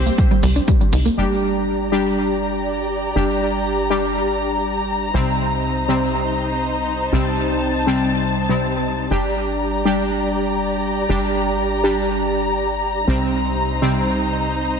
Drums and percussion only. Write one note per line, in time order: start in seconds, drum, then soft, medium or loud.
0.06 shaker soft
0.18 kick loud
0.18 shaker soft
0.31 shaker soft
0.43 open hi-hat loud
0.43 shaker medium
0.56 shaker soft
0.68 kick loud
0.68 shaker soft
0.81 shaker soft
0.93 open hi-hat medium
0.93 shaker medium
1.06 shaker soft